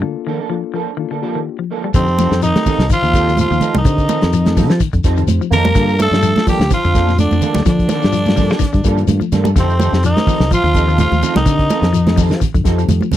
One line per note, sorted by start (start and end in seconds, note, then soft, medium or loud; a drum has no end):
0.02 0.15 D3 medium
0.02 0.29 A#3 medium
0.02 0.29 D4 medium
0.02 0.29 F4 medium
0.02 0.29 A4 medium
0.27 0.39 D#3 medium
0.27 0.40 F3 medium
0.27 0.40 A#3 medium
0.27 0.40 D4 medium
0.27 0.39 A4 medium
0.40 0.54 A#3 soft
0.40 0.54 D4 soft
0.40 0.53 A4 soft
0.50 0.63 F3 medium
0.50 0.77 A#3 medium
0.50 0.77 D4 medium
0.50 0.77 F4 medium
0.50 0.78 A4 medium
0.74 0.87 F3 medium
0.74 0.90 F3 medium
0.74 0.90 A#3 medium
0.74 0.90 D4 medium
0.74 0.90 A4 medium
0.97 1.04 D#3 medium
0.97 1.13 A#3 medium
0.97 1.13 D4 medium
0.97 1.13 F4 medium
0.97 1.13 A4 medium
1.11 1.24 D3 medium
1.11 1.22 A#3 soft
1.11 1.22 D4 soft
1.11 1.22 A4 soft
1.22 1.38 F3 medium
1.22 1.62 A#3 medium
1.22 1.38 A#3 medium
1.22 1.62 D4 medium
1.22 1.38 D4 medium
1.22 1.62 F4 medium
1.22 1.63 G4 medium
1.22 1.38 A4 medium
1.35 1.48 D#3 medium
1.59 1.72 F3 medium
1.71 1.86 F3 medium
1.71 1.86 A#3 medium
1.71 1.86 D4 medium
1.71 1.86 A4 medium
1.84 1.90 G3 medium
1.94 2.26 F2 loud
1.94 2.39 C3 medium
1.94 2.07 D3 medium
1.94 2.07 F3 medium
1.94 2.14 C4 medium
1.94 2.07 C4 medium
1.94 2.39 C4 medium
1.94 2.14 D#4 medium
1.94 2.07 D#4 medium
1.94 2.14 G4 medium
1.94 2.06 A4 medium
1.94 2.15 A4 medium
1.94 2.40 C5 medium
1.94 kick loud
1.94 closed hi-hat medium
1.94 high conga soft
1.94 shekere medium
2.07 2.18 C4 soft
2.07 2.18 D#4 soft
2.07 2.18 A4 soft
2.07 shekere soft
2.18 2.33 F3 medium
2.18 2.31 F3 medium
2.18 2.34 C4 medium
2.18 2.34 D#4 medium
2.18 2.34 A4 medium
2.18 snare soft
2.18 closed hi-hat soft
2.18 high conga medium
2.18 shekere medium
2.31 2.52 F2 medium
2.31 2.43 C4 medium
2.31 2.44 D#4 medium
2.31 2.44 G4 medium
2.31 2.44 A4 medium
2.31 snare medium
2.31 shekere soft
2.42 2.87 D#3 medium
2.42 2.55 F3 medium
2.42 2.87 D#4 loud
2.42 2.88 D#5 medium
2.42 snare soft
2.42 closed hi-hat medium
2.42 shekere medium
2.55 2.87 C4 medium
2.55 2.87 D#4 medium
2.55 2.87 G4 medium
2.55 2.87 A4 medium
2.55 snare medium
2.55 high conga medium
2.55 shekere soft
2.66 2.81 F3 medium
2.66 2.81 C4 medium
2.66 2.81 D#4 medium
2.66 2.82 A4 medium
2.66 kick medium
2.66 open hi-hat medium
2.66 low conga medium
2.66 shekere medium
2.78 2.88 C2 medium
2.78 snare medium
2.78 shekere soft
2.89 2.97 D#3 medium
2.89 3.34 F3 medium
2.89 3.36 F4 loud
2.89 3.36 F5 medium
2.89 kick medium
2.89 closed hi-hat medium
2.89 high conga soft
2.89 shekere medium
3.02 3.44 D#2 medium
3.02 3.15 D3 medium
3.02 closed hi-hat soft
3.02 high conga soft
3.02 shekere soft
3.13 3.29 F3 medium
3.13 3.29 C4 medium
3.13 3.54 C4 medium
3.13 3.54 D#4 medium
3.13 3.54 G4 medium
3.13 3.29 A4 medium
3.13 3.54 A4 medium
3.13 kick medium
3.13 snare soft
3.13 closed hi-hat medium
3.13 shekere medium
3.28 3.40 D#3 medium
3.28 snare soft
3.28 shekere soft
3.36 3.71 F3 medium
3.36 3.73 F4 loud
3.36 closed hi-hat medium
3.36 high conga medium
3.36 shekere medium
3.41 3.74 F5 medium
3.51 3.60 D#2 medium
3.51 3.64 F3 medium
3.51 shekere soft
3.61 3.76 F3 medium
3.61 3.76 D#4 medium
3.61 3.77 A4 medium
3.61 closed hi-hat medium
3.61 high conga medium
3.61 low conga medium
3.61 shekere medium
3.75 3.84 C2 medium
3.75 4.66 D#3 medium
3.75 3.81 G3 medium
3.75 4.67 D#4 medium
3.75 4.67 D#5 medium
3.75 closed hi-hat soft
3.75 high conga loud
3.75 shekere soft
3.84 4.06 D3 loud
3.84 4.05 C4 medium
3.84 4.05 D#4 medium
3.84 4.05 G4 medium
3.84 4.05 C5 medium
3.84 muted clean electric guitar stroke loud
3.84 kick loud
3.84 snare soft
3.84 closed hi-hat medium
3.84 high conga soft
3.84 shekere medium
3.98 kick medium
3.98 closed hi-hat soft
3.98 shekere soft
4.08 4.22 D#3 medium
4.08 4.24 F3 medium
4.08 4.24 C4 medium
4.08 4.24 D#4 medium
4.08 4.24 A4 medium
4.08 closed hi-hat medium
4.08 high conga medium
4.08 shekere medium
4.21 4.70 F2 medium
4.21 4.34 C4 medium
4.21 4.34 D#4 medium
4.21 4.34 G4 medium
4.21 4.34 A4 medium
4.21 snare medium
4.21 closed hi-hat soft
4.21 shekere soft
4.33 4.46 F3 medium
4.33 closed hi-hat medium
4.33 shekere loud
4.45 4.77 C4 loud
4.45 4.77 D#4 medium
4.45 4.77 G4 medium
4.45 4.78 A4 loud
4.45 snare medium
4.45 closed hi-hat soft
4.45 high conga medium
4.45 shekere soft
4.56 4.71 F3 medium
4.56 4.70 F3 medium
4.56 4.72 C4 medium
4.56 4.72 D#4 medium
4.56 4.72 A4 medium
4.56 kick medium
4.56 open hi-hat medium
4.56 low conga medium
4.56 shekere medium
4.70 4.79 F3 medium
4.70 snare medium
4.70 shekere soft
4.80 4.87 D#3 medium
4.80 muted fingered electric bass stroke soft
4.80 kick medium
4.80 closed hi-hat medium
4.80 high conga soft
4.80 shekere medium
4.93 5.03 F2 medium
4.93 5.06 D3 medium
4.93 kick medium
4.93 closed hi-hat soft
4.93 high conga soft
4.93 shekere soft
5.04 5.25 F2 medium
5.04 5.19 F3 medium
5.04 5.19 C4 medium
5.04 5.45 C4 medium
5.04 5.20 D#4 medium
5.04 5.45 D#4 medium
5.04 5.45 G4 medium
5.04 5.20 A4 medium
5.04 5.45 C5 loud
5.04 kick medium
5.04 snare soft
5.04 closed hi-hat medium
5.04 shekere medium
5.17 5.30 D#3 medium
5.17 closed hi-hat soft
5.17 shekere soft
5.27 5.38 F2 medium
5.27 closed hi-hat medium
5.27 high conga medium
5.27 shekere loud
5.41 5.54 F3 medium
5.41 shekere soft
5.50 5.72 F2 medium
5.50 5.67 F3 medium
5.50 5.95 A#3 loud
5.50 5.67 C4 medium
5.50 5.67 D#4 medium
5.50 5.67 A4 medium
5.50 5.97 A#4 loud
5.50 5.96 A#5 medium
5.50 closed hi-hat medium
5.50 low conga medium
5.50 shekere medium
5.65 5.71 G3 medium
5.65 closed hi-hat soft
5.65 high conga loud
5.65 shekere soft
5.75 6.07 G2 loud
5.75 5.88 D3 loud
5.75 5.90 F3 medium
5.75 5.95 A#3 medium
5.75 5.91 A#3 medium
5.75 5.95 D4 medium
5.75 5.91 D4 medium
5.75 5.95 F4 medium
5.75 5.96 A4 medium
5.75 5.91 A4 medium
5.75 kick medium
5.75 closed hi-hat medium
5.75 high conga soft
5.75 shekere medium
5.89 shekere soft
5.99 6.14 F3 medium
5.99 6.43 A3 medium
5.99 6.14 A#3 medium
5.99 6.14 D4 medium
5.99 6.15 A4 medium
5.99 6.45 A4 loud
5.99 6.45 A5 medium
5.99 muted clean electric guitar stroke medium
5.99 closed hi-hat soft
5.99 high conga loud
5.99 shekere medium
6.11 6.32 G2 medium
6.11 6.24 A#3 medium
6.11 6.25 D4 medium
6.11 6.25 F4 medium
6.11 6.25 A4 medium
6.11 snare medium
6.11 shekere soft
6.23 6.35 F3 medium
6.23 closed hi-hat medium
6.23 shekere medium
6.36 6.68 A#3 medium
6.36 6.68 D4 medium
6.36 6.68 F4 medium
6.36 6.69 A4 medium
6.36 snare medium
6.36 high conga medium
6.36 shekere soft
6.45 6.61 F3 medium
6.45 6.60 F3 medium
6.45 6.68 G3 medium
6.45 6.62 A#3 medium
6.45 6.62 D4 medium
6.45 6.62 A4 medium
6.45 6.70 G5 medium
6.45 kick medium
6.45 open hi-hat medium
6.45 low conga medium
6.45 shekere medium
6.49 6.70 G4 loud
6.60 6.69 D2 medium
6.60 snare medium
6.60 shekere soft
6.69 6.78 D#3 medium
6.69 7.14 F3 medium
6.69 7.16 F5 medium
6.69 kick medium
6.69 snare soft
6.69 closed hi-hat medium
6.69 high conga soft
6.69 low conga medium
6.69 shekere medium
6.74 7.16 F4 loud
6.84 7.26 F2 medium
6.84 6.97 D3 medium
6.84 closed hi-hat soft
6.84 high conga soft
6.84 shekere soft
6.94 7.09 F3 medium
6.94 7.34 A#3 medium
6.94 7.09 A#3 medium
6.94 7.10 D4 medium
6.94 7.35 D4 medium
6.94 7.35 F4 medium
6.94 7.35 A4 medium
6.94 7.10 A4 medium
6.94 kick medium
6.94 snare soft
6.94 closed hi-hat medium
6.94 shekere medium
7.08 7.20 A#2 medium
7.08 snare soft
7.08 shekere soft
7.18 7.62 D3 medium
7.18 7.63 D4 medium
7.18 7.64 D5 medium
7.18 closed hi-hat medium
7.18 high conga medium
7.18 shekere medium
7.31 7.41 F2 medium
7.31 7.45 F3 medium
7.31 high conga medium
7.31 shekere soft
7.42 7.57 F3 medium
7.42 7.57 A#3 medium
7.42 7.57 D4 medium
7.42 7.58 A4 medium
7.42 closed hi-hat medium
7.42 high conga medium
7.42 low conga medium
7.42 shekere medium
7.55 7.65 D2 medium
7.55 7.61 G3 medium
7.55 snare soft
7.55 closed hi-hat soft
7.55 high conga loud
7.55 shekere soft
7.65 9.04 D3 medium
7.65 7.79 D3 loud
7.65 7.87 F3 loud
7.65 7.85 A#3 medium
7.65 7.86 D4 medium
7.65 9.06 D4 medium
7.65 7.86 F4 medium
7.65 7.86 A4 medium
7.65 9.05 D5 medium
7.65 kick loud
7.65 snare soft
7.65 closed hi-hat medium
7.65 high conga soft
7.65 shekere medium
7.79 kick medium
7.79 closed hi-hat soft
7.79 shekere soft
7.89 8.02 D#3 medium
7.89 8.05 F3 medium
7.89 8.05 A#3 medium
7.89 8.05 D4 medium
7.89 8.05 A4 medium
7.89 snare soft
7.89 closed hi-hat medium
7.89 high conga loud
7.89 shekere medium
8.02 8.51 G2 medium
8.02 8.15 A#3 medium
8.02 8.15 D4 medium
8.02 8.15 F4 medium
8.02 8.15 A4 medium
8.02 snare medium
8.02 closed hi-hat soft
8.02 shekere soft
8.13 8.25 F3 medium
8.13 closed hi-hat medium
8.13 shekere medium
8.26 8.58 A#3 medium
8.26 8.59 D4 medium
8.26 8.59 F4 medium
8.26 8.59 A4 loud
8.26 snare medium
8.26 closed hi-hat soft
8.26 high conga medium
8.26 shekere soft
8.36 8.49 F3 medium
8.36 8.52 F3 medium
8.36 8.52 A#3 medium
8.36 8.53 D4 medium
8.36 8.53 A4 medium
8.36 kick medium
8.36 open hi-hat medium
8.36 low conga medium
8.36 shekere medium
8.50 8.60 G3 medium
8.50 snare medium
8.50 shekere soft
8.59 8.66 D#3 medium
8.59 muted fingered electric bass stroke soft
8.59 kick medium
8.59 snare soft
8.59 closed hi-hat medium
8.59 high conga soft
8.59 low conga medium
8.59 shekere medium
8.73 8.84 G2 medium
8.73 8.86 D3 medium
8.73 kick medium
8.73 closed hi-hat soft
8.73 high conga soft
8.73 shekere soft
8.84 9.05 G2 medium
8.84 9.00 F3 medium
8.84 9.24 A#3 medium
8.84 9.00 A#3 medium
8.84 9.24 D4 medium
8.84 9.00 D4 medium
8.84 9.25 F4 medium
8.84 9.25 A4 loud
8.84 9.00 A4 medium
8.84 kick medium
8.84 closed hi-hat medium
8.84 shekere medium
8.97 9.09 D#3 medium
8.97 closed hi-hat soft
8.97 shekere soft
9.07 9.19 G2 medium
9.07 closed hi-hat medium
9.07 high conga medium
9.07 low conga medium
9.07 shekere medium
9.20 9.33 F3 medium
9.20 high conga medium
9.20 shekere soft
9.32 9.53 G2 loud
9.32 9.47 F3 medium
9.32 9.47 A#3 medium
9.32 9.48 D4 medium
9.32 9.48 A4 medium
9.32 snare soft
9.32 closed hi-hat medium
9.32 high conga medium
9.32 low conga medium
9.32 shekere medium
9.44 9.50 G3 medium
9.44 closed hi-hat soft
9.44 high conga loud
9.44 shekere soft
9.56 9.88 F2 loud
9.56 10.01 C3 medium
9.56 9.68 D3 medium
9.56 9.71 F3 medium
9.56 9.71 C4 medium
9.56 9.76 C4 medium
9.56 10.02 C4 medium
9.56 9.71 D#4 medium
9.56 9.76 D#4 medium
9.56 9.76 G4 medium
9.56 9.71 A4 medium
9.56 9.77 A4 medium
9.56 10.02 C5 medium
9.56 kick medium
9.56 snare soft
9.56 closed hi-hat medium
9.56 high conga soft
9.56 shekere medium
9.70 shekere soft
9.79 9.92 D#3 medium
9.79 9.95 F3 medium
9.79 9.95 C4 medium
9.79 9.95 D#4 medium
9.79 9.95 A4 medium
9.79 closed hi-hat medium
9.79 high conga medium
9.79 shekere medium
9.92 10.13 F2 medium
9.92 10.04 C4 medium
9.92 10.05 D#4 medium
9.92 10.05 G4 medium
9.92 10.05 A4 medium
9.92 snare medium
9.92 shekere soft
10.03 10.49 D#3 medium
10.03 10.16 F3 medium
10.03 10.49 D#4 loud
10.03 10.48 D#5 medium
10.03 closed hi-hat medium
10.03 shekere medium
10.16 10.48 C4 medium
10.16 10.48 D#4 medium
10.16 10.48 G4 medium
10.16 10.48 C5 medium
10.16 snare medium
10.16 high conga medium
10.16 shekere soft
10.26 10.42 F3 medium
10.26 10.40 F3 medium
10.26 10.42 C4 medium
10.26 10.42 D#4 medium
10.26 10.42 A4 medium
10.26 kick medium
10.26 open hi-hat medium
10.26 low conga medium
10.26 shekere medium
10.40 10.50 C2 medium
10.40 snare medium
10.40 shekere soft
10.51 10.95 F3 loud
10.51 10.58 F3 medium
10.51 10.97 F4 loud
10.51 10.96 F5 loud
10.51 kick medium
10.51 closed hi-hat medium
10.51 high conga soft
10.51 low conga medium
10.51 shekere medium
10.63 11.05 D#2 medium
10.63 10.76 D3 medium
10.63 closed hi-hat soft
10.63 high conga soft
10.63 shekere soft
10.74 10.87 F3 medium
10.74 11.14 C4 medium
10.74 10.87 C4 medium
10.74 11.14 D#4 medium
10.74 10.86 D#4 medium
10.74 11.14 G4 medium
10.74 11.15 A4 medium
10.74 10.86 A4 medium
10.74 kick medium
10.74 closed hi-hat medium
10.74 shekere medium
10.87 11.01 D#3 medium
10.87 11.01 C4 soft
10.87 11.01 D#4 soft
10.87 11.01 A4 medium
10.87 shekere soft
10.98 11.34 F3 medium
10.98 11.33 F4 loud
10.98 11.34 F5 medium
10.98 closed hi-hat medium
10.98 high conga medium
10.98 low conga medium
10.98 shekere medium
11.11 11.21 D#2 medium
11.11 11.24 F3 medium
11.11 high conga medium
11.11 shekere soft
11.22 11.37 F3 medium
11.22 11.37 C4 medium
11.22 11.37 D#4 medium
11.22 11.38 A4 medium
11.22 closed hi-hat soft
11.22 low conga medium
11.22 shekere medium
11.35 11.45 C2 medium
11.35 12.27 D#3 medium
11.35 11.41 G3 medium
11.35 12.27 D#4 loud
11.35 12.26 D#5 medium
11.35 snare soft
11.35 closed hi-hat soft
11.35 high conga loud
11.35 shekere soft
11.46 11.58 D3 medium
11.46 11.67 D3 loud
11.46 11.66 C4 medium
11.46 11.66 D#4 medium
11.46 11.66 G4 medium
11.46 11.67 A4 medium
11.46 kick medium
11.46 snare soft
11.46 closed hi-hat medium
11.46 high conga soft
11.46 shekere medium
11.59 kick medium
11.59 closed hi-hat soft
11.59 shekere soft
11.70 11.85 F3 medium
11.70 11.85 C4 medium
11.70 11.85 D#4 medium
11.70 11.85 A4 medium
11.70 snare soft
11.70 closed hi-hat soft
11.70 high conga loud
11.70 shekere medium
11.82 12.31 F2 medium
11.82 11.95 C4 medium
11.82 11.95 D#4 medium
11.82 11.95 G4 medium
11.82 11.95 A4 medium
11.82 snare medium
11.82 closed hi-hat soft
11.82 shekere soft
11.93 12.05 F3 medium
11.93 closed hi-hat medium
11.93 shekere medium
12.07 12.38 C4 loud
12.07 12.39 D#4 medium
12.07 12.39 G4 medium
12.07 12.39 A4 loud
12.07 snare medium
12.07 closed hi-hat soft
12.07 high conga medium
12.07 shekere soft
12.16 12.29 F3 medium
12.16 12.32 F3 medium
12.16 12.33 C4 medium
12.16 12.33 D#4 medium
12.16 12.33 A4 medium
12.16 kick medium
12.16 open hi-hat medium
12.16 low conga medium
12.16 shekere medium
12.30 12.39 F3 medium
12.30 snare medium
12.30 shekere soft
12.40 12.47 D#3 medium
12.40 kick medium
12.40 closed hi-hat medium
12.40 high conga soft
12.40 low conga medium
12.40 shekere medium
12.54 12.64 F2 medium
12.54 12.67 D3 medium
12.54 kick medium
12.54 closed hi-hat soft
12.54 high conga soft
12.54 shekere soft
12.64 12.86 F2 medium
12.64 12.80 F3 medium
12.64 13.04 C4 medium
12.64 12.80 C4 medium
12.64 13.04 D#4 medium
12.64 12.80 D#4 medium
12.64 13.05 G4 medium
12.64 13.05 A4 loud
12.64 12.81 A4 medium
12.64 kick medium
12.64 snare soft
12.64 closed hi-hat medium
12.64 shekere medium
12.78 12.91 F3 medium
12.78 closed hi-hat soft
12.78 shekere soft
12.88 13.00 F2 medium
12.88 closed hi-hat medium
12.88 high conga medium
12.88 low conga medium
12.88 shekere medium
13.01 13.15 F3 medium
13.01 high conga medium
13.01 shekere soft
13.12 13.17 F2 loud
13.12 13.17 F3 medium
13.12 13.17 C4 medium
13.12 13.17 D#4 medium
13.12 13.17 A4 medium
13.12 snare soft
13.12 closed hi-hat medium
13.12 high conga medium
13.12 low conga medium
13.12 shekere medium